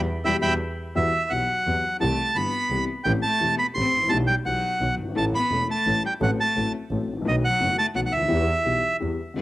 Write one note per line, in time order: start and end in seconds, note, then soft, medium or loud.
0.24 0.39 E2 medium
0.24 0.36 B2 medium
0.24 0.36 E3 medium
0.24 0.36 G3 medium
0.24 0.37 G3 medium
0.24 0.36 E5 medium
0.24 0.37 G5 medium
0.24 0.37 B5 medium
0.42 0.56 E2 medium
0.42 0.53 B2 medium
0.42 0.53 E3 medium
0.42 0.53 G3 medium
0.42 0.53 E5 medium
0.42 0.54 G5 medium
0.42 0.54 B5 medium
0.95 1.10 E2 medium
0.95 1.11 E2 medium
0.95 1.11 E3 medium
0.95 1.30 E3 medium
0.95 1.10 G3 medium
0.95 1.11 B3 medium
0.95 1.11 F#4 medium
0.95 1.32 E5 medium
1.30 1.46 B1 soft
1.30 1.46 B2 soft
1.30 1.45 E3 soft
1.30 1.98 F#3 medium
1.30 1.46 G3 soft
1.30 1.46 B3 soft
1.30 1.46 F#4 soft
1.30 1.97 F#5 medium
1.66 1.81 E2 medium
1.66 1.81 E3 medium
1.66 1.81 G3 soft
1.66 1.81 B3 soft
1.66 1.81 F#4 soft
2.00 2.16 C2 medium
2.00 2.16 C3 medium
2.00 2.15 E3 medium
2.00 2.16 G3 medium
2.00 2.34 A3 medium
2.00 2.16 C4 medium
2.00 2.16 G4 medium
2.00 2.37 A5 medium
2.36 2.51 G1 soft
2.36 2.51 G2 soft
2.36 2.51 E3 soft
2.36 2.51 G3 soft
2.36 2.85 B3 medium
2.36 2.51 C4 soft
2.36 2.51 G4 soft
2.36 2.85 B5 medium
2.70 2.85 C2 medium
2.70 2.86 C2 medium
2.70 2.86 C3 medium
2.70 2.86 E3 soft
2.70 2.86 G3 soft
2.70 2.86 C4 soft
2.70 2.86 G4 soft
3.04 3.21 A1 medium
3.04 3.20 A2 medium
3.04 3.20 E3 medium
3.04 3.15 G3 medium
3.04 3.20 A3 medium
3.04 3.20 C4 medium
3.04 3.20 G4 medium
3.04 3.12 G5 medium
3.22 3.56 A3 medium
3.22 3.55 A5 medium
3.40 3.55 E1 soft
3.40 3.56 E1 medium
3.40 3.55 E2 soft
3.40 3.55 E3 soft
3.40 3.55 A3 soft
3.40 3.55 C4 soft
3.40 3.55 G4 medium
3.58 3.66 B3 medium
3.58 3.67 B5 medium
3.74 3.90 A1 medium
3.74 3.91 A1 medium
3.74 3.90 A2 medium
3.74 3.90 E3 soft
3.74 3.90 A3 soft
3.74 3.90 C4 soft
3.74 4.09 C4 medium
3.74 3.90 G4 soft
3.74 4.11 C6 medium
3.94 4.02 G#1 soft
3.94 4.10 A1 soft
4.01 4.06 A1 medium
4.08 4.11 A#1 medium
4.08 4.25 B1 medium
4.08 4.25 B2 medium
4.08 4.25 E3 medium
4.08 4.25 G3 medium
4.08 4.19 A3 medium
4.08 4.25 B3 medium
4.08 4.25 G4 medium
4.08 4.18 A5 medium
4.27 4.36 G3 medium
4.27 4.35 G5 medium
4.45 4.60 B1 medium
4.45 4.61 B1 soft
4.45 4.61 B2 medium
4.45 4.60 E3 soft
4.45 4.95 F#3 medium
4.45 4.60 G3 soft
4.45 4.60 B3 soft
4.45 4.61 G4 soft
4.45 4.95 F#5 medium
4.80 4.96 B1 medium
4.80 4.96 B2 medium
4.80 4.96 D#3 soft
4.80 4.96 F#3 soft
4.80 4.96 B3 soft
4.80 4.96 F#4 soft
4.98 5.15 G1 soft
5.03 5.07 F#1 soft
5.08 5.12 G1 soft
5.08 5.16 G#1 medium
5.15 5.31 A1 medium
5.15 5.31 A2 medium
5.15 5.31 E3 medium
5.15 5.31 A3 medium
5.15 5.24 A3 medium
5.15 5.31 C#4 medium
5.15 5.31 A4 medium
5.15 5.25 A5 medium
5.34 5.67 B3 medium
5.34 5.67 B5 medium
5.51 5.66 E1 soft
5.51 5.66 E1 medium
5.51 5.66 E2 soft
5.51 5.66 E3 soft
5.51 5.66 A3 soft
5.51 5.66 C#4 soft
5.51 5.67 A4 soft
5.68 6.01 A3 medium
5.68 6.03 A5 medium
5.86 6.01 A1 medium
5.86 6.02 A1 medium
5.86 6.02 A2 medium
5.86 6.01 E3 soft
5.86 6.01 A3 soft
5.86 6.02 C#4 soft
5.86 6.02 A4 soft
6.04 6.12 G3 medium
6.04 6.14 G5 medium
6.20 6.36 A1 medium
6.20 6.37 A1 medium
6.20 6.36 A2 medium
6.20 6.36 F#3 medium
6.20 6.30 F#3 medium
6.20 6.36 A3 medium
6.20 6.36 C4 medium
6.20 6.36 A4 medium
6.20 6.31 F#5 medium
6.40 6.72 A3 medium
6.40 6.72 A5 medium
6.55 6.71 A1 soft
6.55 6.72 A1 medium
6.55 6.71 A2 soft
6.55 6.71 F#3 soft
6.55 6.71 A3 soft
6.55 6.71 C4 soft
6.55 6.71 A4 soft
6.91 7.06 A1 medium
6.91 7.06 A2 medium
6.91 7.06 F#3 soft
6.91 7.06 A3 soft
6.91 7.06 C4 soft
6.91 7.06 A4 medium
7.09 7.17 G#1 soft
7.09 7.26 A1 medium
7.16 7.22 A1 medium
7.22 7.26 A#1 medium
7.22 7.40 B1 medium
7.22 7.40 B2 medium
7.22 7.40 D#3 medium
7.22 7.41 A3 medium
7.22 7.41 B3 medium
7.26 7.41 B1 loud
7.26 7.34 D#3 medium
7.26 7.41 F#4 medium
7.26 7.36 D#5 medium
7.44 7.76 F#3 medium
7.44 7.77 F#5 medium
7.60 7.75 F#1 medium
7.60 7.76 F#1 medium
7.60 7.75 F#2 soft
7.60 7.75 D#3 soft
7.60 7.75 A3 soft
7.60 7.75 B3 soft
7.60 7.75 F#4 soft
7.78 7.86 A3 medium
7.78 7.86 A5 loud
7.95 8.10 B1 medium
7.95 8.10 B2 medium
7.95 8.10 D#3 soft
7.95 8.00 F#3 medium
7.95 8.10 A3 soft
7.95 8.10 B3 soft
7.95 8.10 F#4 soft
7.95 8.00 F#5 medium
8.06 8.13 F#3 medium
8.06 8.13 F#5 medium
8.12 8.30 D2 medium
8.12 8.97 E3 medium
8.12 8.97 E5 medium
8.16 8.21 C#2 soft
8.21 8.26 D2 medium
8.21 8.30 D#2 medium
8.28 8.45 E2 medium
8.28 8.46 E2 loud
8.28 8.44 E3 medium
8.28 8.44 G3 medium
8.28 8.44 B3 medium
8.28 8.45 G4 medium
8.65 8.80 B1 medium
8.65 8.81 B1 medium
8.65 8.80 B2 soft
8.65 8.80 E3 soft
8.65 8.80 G3 soft
8.65 8.80 B3 soft
8.65 8.80 G4 soft
9.00 9.16 E2 medium
9.00 9.17 E2 medium
9.00 9.16 E3 medium
9.00 9.16 G3 soft
9.00 9.16 B3 soft
9.00 9.16 G4 soft
9.34 9.42 G1 medium
9.34 9.42 G2 medium
9.34 9.42 D3 medium
9.34 9.42 G3 soft
9.34 9.42 B3 loud
9.34 9.42 B3 soft
9.39 9.42 G4 medium